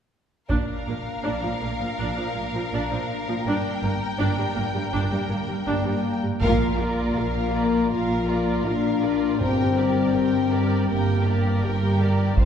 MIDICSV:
0, 0, Header, 1, 9, 480
1, 0, Start_track
1, 0, Tempo, 741656
1, 326, Time_signature, 4, 2, 24, 8
1, 8058, End_track
2, 0, Start_track
2, 0, Title_t, "Violin section"
2, 0, Program_c, 0, 48
2, 331, Note_on_c, 0, 77, 37
2, 2215, Note_off_c, 0, 77, 0
2, 2239, Note_on_c, 0, 79, 49
2, 3997, Note_off_c, 0, 79, 0
2, 4154, Note_on_c, 0, 77, 55
2, 4376, Note_off_c, 0, 77, 0
2, 4394, Note_on_c, 0, 74, 34
2, 4633, Note_off_c, 0, 74, 0
2, 4641, Note_on_c, 0, 77, 36
2, 4877, Note_on_c, 0, 74, 36
2, 4880, Note_off_c, 0, 77, 0
2, 5121, Note_off_c, 0, 74, 0
2, 5121, Note_on_c, 0, 77, 38
2, 5345, Note_off_c, 0, 77, 0
2, 5364, Note_on_c, 0, 74, 33
2, 5603, Note_off_c, 0, 74, 0
2, 5604, Note_on_c, 0, 77, 33
2, 5843, Note_off_c, 0, 77, 0
2, 5844, Note_on_c, 0, 74, 35
2, 6083, Note_off_c, 0, 74, 0
2, 6091, Note_on_c, 0, 79, 39
2, 6310, Note_off_c, 0, 79, 0
2, 6326, Note_on_c, 0, 74, 37
2, 6557, Note_on_c, 0, 79, 36
2, 6565, Note_off_c, 0, 74, 0
2, 6801, Note_off_c, 0, 79, 0
2, 6805, Note_on_c, 0, 74, 40
2, 7045, Note_off_c, 0, 74, 0
2, 7056, Note_on_c, 0, 79, 37
2, 7274, Note_off_c, 0, 79, 0
2, 7295, Note_on_c, 0, 74, 33
2, 7529, Note_off_c, 0, 74, 0
2, 7532, Note_on_c, 0, 79, 33
2, 7765, Note_on_c, 0, 74, 37
2, 7767, Note_off_c, 0, 79, 0
2, 8004, Note_off_c, 0, 74, 0
2, 8009, Note_on_c, 0, 77, 39
2, 8058, Note_off_c, 0, 77, 0
2, 8058, End_track
3, 0, Start_track
3, 0, Title_t, "Violin section"
3, 0, Program_c, 1, 48
3, 324, Note_on_c, 1, 70, 33
3, 3996, Note_off_c, 1, 70, 0
3, 4153, Note_on_c, 1, 70, 54
3, 4376, Note_off_c, 1, 70, 0
3, 4394, Note_on_c, 1, 65, 35
3, 4633, Note_off_c, 1, 65, 0
3, 4633, Note_on_c, 1, 70, 37
3, 4876, Note_off_c, 1, 70, 0
3, 4883, Note_on_c, 1, 65, 39
3, 5122, Note_on_c, 1, 70, 39
3, 5124, Note_off_c, 1, 65, 0
3, 5346, Note_off_c, 1, 70, 0
3, 5361, Note_on_c, 1, 65, 34
3, 5602, Note_off_c, 1, 65, 0
3, 5604, Note_on_c, 1, 70, 35
3, 5843, Note_off_c, 1, 70, 0
3, 5843, Note_on_c, 1, 65, 33
3, 6080, Note_on_c, 1, 70, 39
3, 6083, Note_off_c, 1, 65, 0
3, 6304, Note_off_c, 1, 70, 0
3, 6319, Note_on_c, 1, 67, 35
3, 6558, Note_on_c, 1, 70, 38
3, 6561, Note_off_c, 1, 67, 0
3, 6802, Note_off_c, 1, 70, 0
3, 6805, Note_on_c, 1, 67, 42
3, 7044, Note_on_c, 1, 70, 39
3, 7045, Note_off_c, 1, 67, 0
3, 7267, Note_off_c, 1, 70, 0
3, 7277, Note_on_c, 1, 67, 36
3, 7521, Note_off_c, 1, 67, 0
3, 7528, Note_on_c, 1, 70, 39
3, 7765, Note_off_c, 1, 70, 0
3, 7767, Note_on_c, 1, 67, 34
3, 8005, Note_off_c, 1, 67, 0
3, 8006, Note_on_c, 1, 72, 37
3, 8058, Note_off_c, 1, 72, 0
3, 8058, End_track
4, 0, Start_track
4, 0, Title_t, "Viola section"
4, 0, Program_c, 2, 48
4, 317, Note_on_c, 2, 62, 46
4, 433, Note_off_c, 2, 62, 0
4, 571, Note_on_c, 2, 58, 32
4, 618, Note_off_c, 2, 58, 0
4, 796, Note_on_c, 2, 62, 42
4, 913, Note_off_c, 2, 62, 0
4, 924, Note_on_c, 2, 53, 33
4, 972, Note_off_c, 2, 53, 0
4, 1045, Note_on_c, 2, 58, 27
4, 1093, Note_off_c, 2, 58, 0
4, 1161, Note_on_c, 2, 53, 31
4, 1210, Note_off_c, 2, 53, 0
4, 1278, Note_on_c, 2, 62, 43
4, 1392, Note_off_c, 2, 62, 0
4, 1404, Note_on_c, 2, 53, 33
4, 1451, Note_off_c, 2, 53, 0
4, 1516, Note_on_c, 2, 58, 31
4, 1565, Note_off_c, 2, 58, 0
4, 1642, Note_on_c, 2, 53, 39
4, 1689, Note_off_c, 2, 53, 0
4, 1764, Note_on_c, 2, 62, 52
4, 1873, Note_off_c, 2, 62, 0
4, 1888, Note_on_c, 2, 53, 35
4, 1934, Note_off_c, 2, 53, 0
4, 2124, Note_on_c, 2, 53, 43
4, 2171, Note_off_c, 2, 53, 0
4, 2246, Note_on_c, 2, 62, 62
4, 2353, Note_off_c, 2, 62, 0
4, 2482, Note_on_c, 2, 58, 43
4, 2529, Note_off_c, 2, 58, 0
4, 2708, Note_on_c, 2, 62, 52
4, 2821, Note_off_c, 2, 62, 0
4, 2832, Note_on_c, 2, 55, 48
4, 2879, Note_off_c, 2, 55, 0
4, 2947, Note_on_c, 2, 58, 43
4, 2995, Note_off_c, 2, 58, 0
4, 3075, Note_on_c, 2, 55, 46
4, 3122, Note_off_c, 2, 55, 0
4, 3188, Note_on_c, 2, 62, 53
4, 3299, Note_off_c, 2, 62, 0
4, 3314, Note_on_c, 2, 55, 40
4, 3360, Note_off_c, 2, 55, 0
4, 3426, Note_on_c, 2, 58, 39
4, 3475, Note_off_c, 2, 58, 0
4, 3545, Note_on_c, 2, 55, 41
4, 3594, Note_off_c, 2, 55, 0
4, 3665, Note_on_c, 2, 62, 50
4, 3779, Note_off_c, 2, 62, 0
4, 3789, Note_on_c, 2, 55, 39
4, 3838, Note_off_c, 2, 55, 0
4, 4029, Note_on_c, 2, 55, 35
4, 4078, Note_off_c, 2, 55, 0
4, 4151, Note_on_c, 2, 65, 65
4, 4375, Note_off_c, 2, 65, 0
4, 4391, Note_on_c, 2, 70, 36
4, 4629, Note_on_c, 2, 65, 32
4, 4632, Note_off_c, 2, 70, 0
4, 4872, Note_on_c, 2, 70, 31
4, 4874, Note_off_c, 2, 65, 0
4, 5118, Note_on_c, 2, 65, 38
4, 5119, Note_off_c, 2, 70, 0
4, 5344, Note_off_c, 2, 65, 0
4, 5363, Note_on_c, 2, 70, 35
4, 5603, Note_off_c, 2, 70, 0
4, 5605, Note_on_c, 2, 65, 41
4, 5844, Note_off_c, 2, 65, 0
4, 5844, Note_on_c, 2, 70, 36
4, 6083, Note_off_c, 2, 70, 0
4, 6084, Note_on_c, 2, 67, 45
4, 6307, Note_off_c, 2, 67, 0
4, 6326, Note_on_c, 2, 70, 38
4, 6556, Note_on_c, 2, 67, 37
4, 6565, Note_off_c, 2, 70, 0
4, 6801, Note_off_c, 2, 67, 0
4, 6802, Note_on_c, 2, 70, 33
4, 7044, Note_off_c, 2, 70, 0
4, 7046, Note_on_c, 2, 67, 35
4, 7269, Note_off_c, 2, 67, 0
4, 7287, Note_on_c, 2, 70, 36
4, 7525, Note_off_c, 2, 70, 0
4, 7530, Note_on_c, 2, 67, 41
4, 7767, Note_off_c, 2, 67, 0
4, 7773, Note_on_c, 2, 70, 35
4, 8008, Note_off_c, 2, 70, 0
4, 8015, Note_on_c, 2, 65, 44
4, 8058, Note_off_c, 2, 65, 0
4, 8058, End_track
5, 0, Start_track
5, 0, Title_t, "French horn section"
5, 0, Program_c, 3, 60
5, 333, Note_on_c, 3, 58, 39
5, 337, Note_on_c, 3, 62, 39
5, 3646, Note_off_c, 3, 58, 0
5, 3648, Note_off_c, 3, 62, 0
5, 3669, Note_on_c, 3, 58, 59
5, 4046, Note_off_c, 3, 58, 0
5, 4156, Note_on_c, 3, 58, 71
5, 5096, Note_off_c, 3, 58, 0
5, 5122, Note_on_c, 3, 65, 54
5, 5599, Note_on_c, 3, 62, 58
5, 5603, Note_off_c, 3, 65, 0
5, 6078, Note_on_c, 3, 60, 69
5, 6080, Note_off_c, 3, 62, 0
5, 7043, Note_off_c, 3, 60, 0
5, 7045, Note_on_c, 3, 58, 44
5, 7515, Note_off_c, 3, 58, 0
5, 8003, Note_on_c, 3, 60, 66
5, 8058, Note_off_c, 3, 60, 0
5, 8058, End_track
6, 0, Start_track
6, 0, Title_t, "Cello section"
6, 0, Program_c, 4, 48
6, 324, Note_on_c, 4, 46, 41
6, 372, Note_off_c, 4, 46, 0
6, 568, Note_on_c, 4, 46, 29
6, 616, Note_off_c, 4, 46, 0
6, 810, Note_on_c, 4, 46, 37
6, 858, Note_off_c, 4, 46, 0
6, 932, Note_on_c, 4, 46, 29
6, 979, Note_off_c, 4, 46, 0
6, 1050, Note_on_c, 4, 46, 31
6, 1097, Note_off_c, 4, 46, 0
6, 1166, Note_on_c, 4, 46, 30
6, 1213, Note_off_c, 4, 46, 0
6, 1282, Note_on_c, 4, 46, 44
6, 1330, Note_off_c, 4, 46, 0
6, 1400, Note_on_c, 4, 46, 30
6, 1448, Note_off_c, 4, 46, 0
6, 1523, Note_on_c, 4, 46, 34
6, 1570, Note_off_c, 4, 46, 0
6, 1641, Note_on_c, 4, 46, 34
6, 1689, Note_off_c, 4, 46, 0
6, 1760, Note_on_c, 4, 46, 52
6, 1808, Note_off_c, 4, 46, 0
6, 1881, Note_on_c, 4, 46, 31
6, 1928, Note_off_c, 4, 46, 0
6, 2119, Note_on_c, 4, 46, 38
6, 2167, Note_off_c, 4, 46, 0
6, 2238, Note_on_c, 4, 43, 56
6, 2286, Note_off_c, 4, 43, 0
6, 2476, Note_on_c, 4, 43, 40
6, 2524, Note_off_c, 4, 43, 0
6, 2716, Note_on_c, 4, 43, 57
6, 2763, Note_off_c, 4, 43, 0
6, 2837, Note_on_c, 4, 43, 42
6, 2884, Note_off_c, 4, 43, 0
6, 2959, Note_on_c, 4, 43, 47
6, 3005, Note_off_c, 4, 43, 0
6, 3079, Note_on_c, 4, 43, 50
6, 3124, Note_off_c, 4, 43, 0
6, 3196, Note_on_c, 4, 43, 70
6, 3242, Note_off_c, 4, 43, 0
6, 3316, Note_on_c, 4, 43, 43
6, 3362, Note_off_c, 4, 43, 0
6, 3436, Note_on_c, 4, 43, 42
6, 3483, Note_off_c, 4, 43, 0
6, 3556, Note_on_c, 4, 43, 46
6, 3602, Note_off_c, 4, 43, 0
6, 3675, Note_on_c, 4, 43, 57
6, 3722, Note_off_c, 4, 43, 0
6, 3793, Note_on_c, 4, 43, 36
6, 3841, Note_off_c, 4, 43, 0
6, 4037, Note_on_c, 4, 43, 33
6, 4084, Note_off_c, 4, 43, 0
6, 4153, Note_on_c, 4, 46, 70
6, 4559, Note_off_c, 4, 46, 0
6, 4631, Note_on_c, 4, 46, 46
6, 5062, Note_off_c, 4, 46, 0
6, 5122, Note_on_c, 4, 46, 45
6, 5546, Note_off_c, 4, 46, 0
6, 5604, Note_on_c, 4, 46, 44
6, 6026, Note_off_c, 4, 46, 0
6, 6083, Note_on_c, 4, 43, 45
6, 6507, Note_off_c, 4, 43, 0
6, 6563, Note_on_c, 4, 43, 42
6, 6988, Note_off_c, 4, 43, 0
6, 7049, Note_on_c, 4, 43, 46
6, 7470, Note_off_c, 4, 43, 0
6, 7526, Note_on_c, 4, 43, 50
6, 7948, Note_off_c, 4, 43, 0
6, 8002, Note_on_c, 4, 41, 50
6, 8058, Note_off_c, 4, 41, 0
6, 8058, End_track
7, 0, Start_track
7, 0, Title_t, "Timpani"
7, 0, Program_c, 5, 47
7, 6084, Note_on_c, 5, 43, 49
7, 6780, Note_off_c, 5, 43, 0
7, 8058, End_track
8, 0, Start_track
8, 0, Title_t, "Double bass section"
8, 0, Program_c, 6, 48
8, 328, Note_on_c, 6, 34, 38
8, 376, Note_off_c, 6, 34, 0
8, 572, Note_on_c, 6, 34, 26
8, 619, Note_off_c, 6, 34, 0
8, 812, Note_on_c, 6, 34, 38
8, 859, Note_off_c, 6, 34, 0
8, 1053, Note_on_c, 6, 34, 35
8, 1099, Note_off_c, 6, 34, 0
8, 1283, Note_on_c, 6, 34, 45
8, 1331, Note_off_c, 6, 34, 0
8, 1526, Note_on_c, 6, 34, 29
8, 1573, Note_off_c, 6, 34, 0
8, 1763, Note_on_c, 6, 34, 44
8, 1810, Note_off_c, 6, 34, 0
8, 2236, Note_on_c, 6, 31, 49
8, 2284, Note_off_c, 6, 31, 0
8, 2476, Note_on_c, 6, 31, 39
8, 2523, Note_off_c, 6, 31, 0
8, 2714, Note_on_c, 6, 31, 58
8, 2762, Note_off_c, 6, 31, 0
8, 2953, Note_on_c, 6, 31, 47
8, 3000, Note_off_c, 6, 31, 0
8, 3190, Note_on_c, 6, 31, 64
8, 3237, Note_off_c, 6, 31, 0
8, 3429, Note_on_c, 6, 31, 37
8, 3477, Note_off_c, 6, 31, 0
8, 3671, Note_on_c, 6, 31, 53
8, 3719, Note_off_c, 6, 31, 0
8, 4158, Note_on_c, 6, 34, 61
8, 4561, Note_off_c, 6, 34, 0
8, 4635, Note_on_c, 6, 34, 46
8, 5064, Note_off_c, 6, 34, 0
8, 5126, Note_on_c, 6, 34, 43
8, 5548, Note_off_c, 6, 34, 0
8, 5608, Note_on_c, 6, 34, 39
8, 6029, Note_off_c, 6, 34, 0
8, 6087, Note_on_c, 6, 31, 45
8, 6509, Note_off_c, 6, 31, 0
8, 6567, Note_on_c, 6, 31, 45
8, 6990, Note_off_c, 6, 31, 0
8, 7048, Note_on_c, 6, 31, 49
8, 7469, Note_off_c, 6, 31, 0
8, 7524, Note_on_c, 6, 31, 44
8, 7947, Note_off_c, 6, 31, 0
8, 8004, Note_on_c, 6, 29, 46
8, 8058, Note_off_c, 6, 29, 0
8, 8058, End_track
9, 0, Start_track
9, 0, Title_t, "Taiko and cinematic ensemble drums"
9, 320, Note_on_c, 9, 41, 40
9, 385, Note_off_c, 9, 41, 0
9, 4151, Note_on_c, 9, 41, 48
9, 4216, Note_off_c, 9, 41, 0
9, 8004, Note_on_c, 9, 41, 54
9, 8058, Note_off_c, 9, 41, 0
9, 8058, End_track
0, 0, End_of_file